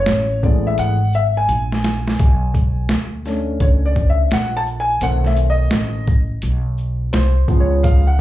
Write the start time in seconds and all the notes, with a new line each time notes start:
Already playing: C#5
0.06 A1, snare, closed hi-hat
0.43 E3 G#3 A3 B3 D5, kick, shaker
0.67 E5
0.78 G#1 F#5, closed hi-hat
1.13 E5, shaker
1.37 G#5
1.49 A#1, closed hi-hat
1.72 snare
1.84 snare, closed hi-hat, shaker
2.08 snare
2.19 B1, kick, closed hi-hat
2.54 kick, closed hi-hat, shaker
2.89 D2, snare, closed hi-hat
3.25 A3 C#4 D4, snare, shaker
3.60 C#2 C#5, kick, closed hi-hat
3.86 D5
3.96 kick, shaker
4.10 E5
4.31 A#1 F#5, snare, closed hi-hat
4.57 A5
4.67 shaker
4.80 G#5
5.01 B1 D#3 A3 C4 F#5, closed hi-hat
5.24 E5, snare
5.37 closed hi-hat, shaker
5.50 D#5
5.71 A1, snare, closed hi-hat
6.07 kick, shaker
6.42 B1, closed hi-hat
6.78 shaker
7.13 C2 C5, snare, closed hi-hat
7.48 C#2 F3 G#3 B3, kick, shaker
7.60 C#5
7.83 F5, kick, closed hi-hat
8.07 F#5